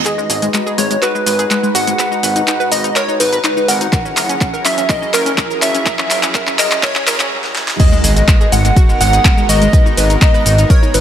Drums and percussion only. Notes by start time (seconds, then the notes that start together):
0.06 clap, closed hi-hat, shaker
0.19 shaker
0.30 open hi-hat, shaker
0.42 closed hi-hat, shaker
0.54 clap, closed hi-hat, shaker
0.67 shaker
0.78 open hi-hat, shaker
0.91 closed hi-hat, shaker
1.02 clap, closed hi-hat, shaker
1.15 shaker
1.26 open hi-hat, shaker
1.39 closed hi-hat, shaker
1.51 clap, closed hi-hat, shaker
1.64 shaker
1.75 open hi-hat, shaker
1.87 closed hi-hat, shaker
1.99 clap, closed hi-hat, shaker
2.12 shaker
2.23 open hi-hat, shaker
2.36 closed hi-hat, shaker
2.47 clap, closed hi-hat, shaker
2.61 shaker
2.72 open hi-hat, shaker
2.84 closed hi-hat, shaker
2.96 clap, closed hi-hat, shaker
3.09 shaker
3.20 open hi-hat, shaker
3.33 closed hi-hat, shaker
3.44 clap, closed hi-hat, shaker
3.57 shaker
3.68 open hi-hat, shaker
3.81 closed hi-hat, shaker
3.93 kick, clap, closed hi-hat, shaker
4.06 shaker
4.17 clap, open hi-hat, shaker
4.29 closed hi-hat, shaker
4.41 kick, clap, closed hi-hat, shaker
4.54 shaker
4.65 clap, open hi-hat, shaker
4.78 closed hi-hat, shaker
4.89 kick, clap, closed hi-hat, shaker
5.02 shaker
5.14 clap, open hi-hat, shaker
5.26 closed hi-hat, shaker
5.38 kick, clap, closed hi-hat, shaker
5.51 shaker
5.62 clap, open hi-hat, shaker
5.75 closed hi-hat, shaker
5.86 kick, clap, closed hi-hat, shaker
5.99 clap, shaker
6.10 clap, open hi-hat, shaker
6.23 clap, closed hi-hat, shaker
6.35 kick, clap, closed hi-hat, shaker
6.47 clap, shaker
6.59 clap, open hi-hat, shaker
6.71 clap, closed hi-hat, shaker
6.83 kick, clap, closed hi-hat, shaker
6.96 clap, shaker
7.07 clap, open hi-hat, shaker
7.20 clap, closed hi-hat, shaker
7.44 snare
7.56 snare
7.68 snare
7.80 kick, closed hi-hat, crash, shaker
7.93 shaker
8.04 open hi-hat, shaker
8.16 closed hi-hat, shaker
8.28 kick, clap, closed hi-hat, shaker
8.41 shaker
8.52 open hi-hat, shaker
8.65 closed hi-hat, shaker
8.76 kick, closed hi-hat, shaker
8.90 shaker
9.01 open hi-hat, shaker
9.13 closed hi-hat, shaker
9.25 kick, clap, closed hi-hat, shaker
9.38 shaker
9.49 open hi-hat, shaker
9.62 closed hi-hat, shaker
9.73 kick, closed hi-hat, shaker
9.86 shaker
9.97 open hi-hat, shaker
10.10 closed hi-hat, shaker
10.22 kick, clap, closed hi-hat, shaker
10.35 shaker
10.46 open hi-hat, shaker
10.58 closed hi-hat, shaker
10.70 kick, closed hi-hat, shaker
10.83 shaker
10.94 open hi-hat, shaker